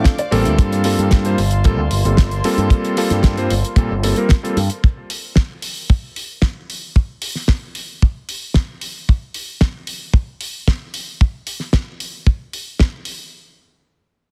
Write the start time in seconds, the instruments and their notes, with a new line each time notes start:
Already playing: electric grand piano F3 A3 C4 D4 A4, string section C5 F5 D6
0.04 kick, snare, closed hi-hat
0.18 clean electric guitar D5, closed hi-hat
0.31 picked electric bass A1, electric grand piano G3 A#3 C4 F4 A4, clean electric guitar F4, open hi-hat
0.45 picked electric bass D2, clean electric guitar D4, closed hi-hat
0.58 picked electric bass G2, string section A#3 A5 C6, kick, closed hi-hat
0.72 closed hi-hat
0.84 electric grand piano G3 A#3 C4 F4 A4, open hi-hat
0.99 picked electric bass G2, closed hi-hat
1.11 kick, snare, closed hi-hat
1.25 electric grand piano G3 A#3 C4 F4 C5, closed hi-hat
1.38 picked electric bass G1, open hi-hat
1.51 closed hi-hat
1.64 electric grand piano G3 A#3 C4 F4 A4, kick, closed hi-hat
1.78 picked electric bass D2
1.91 picked electric bass G1, open hi-hat
2.05 picked electric bass G1, electric grand piano G3 A#3 C4 F4 A4, closed hi-hat
2.17 kick, snare, closed hi-hat
2.31 closed hi-hat
2.44 electric grand piano G3 A#3 C4 F4 A4, open hi-hat
2.58 picked electric bass G2, closed hi-hat
2.70 kick, closed hi-hat
2.85 closed hi-hat
2.97 electric grand piano G3 A#3 C4 F4 A4, open hi-hat
3.10 picked electric bass G2, snare, closed hi-hat
3.23 kick, snare, closed hi-hat
3.37 electric grand piano G3 A#3 C4 F4 C5, closed hi-hat
3.50 picked electric bass G1, open hi-hat
3.65 closed hi-hat
3.76 picked electric bass A#2, electric grand piano G3 A#3 C4 F4 A4, kick, closed hi-hat
3.90 picked electric bass G1
4.03 electric grand piano G3 A#3 C4 F4 A4, open hi-hat
4.16 electric grand piano G3 A#3 C4 F4 A#4, closed hi-hat
4.29 kick, snare, closed hi-hat
4.43 electric grand piano G3 A#3 C4 F4 A4, closed hi-hat
4.57 picked electric bass G2, open hi-hat
4.70 closed hi-hat
4.84 kick
5.10 open hi-hat
5.36 kick, snare
5.62 open hi-hat
5.90 kick
6.16 open hi-hat
6.42 kick, snare
6.70 open hi-hat
6.96 kick
7.22 open hi-hat
7.35 snare
7.48 kick, snare
7.75 open hi-hat
8.02 kick
8.29 open hi-hat
8.54 kick, snare
8.81 open hi-hat
9.09 kick
9.34 open hi-hat
9.61 kick, snare
9.87 open hi-hat
10.14 kick
10.41 open hi-hat
10.68 kick, snare
10.94 open hi-hat
11.21 kick
11.47 open hi-hat
11.60 snare
11.73 kick, snare
12.00 open hi-hat
12.27 kick
12.53 open hi-hat
12.79 kick, snare
13.05 open hi-hat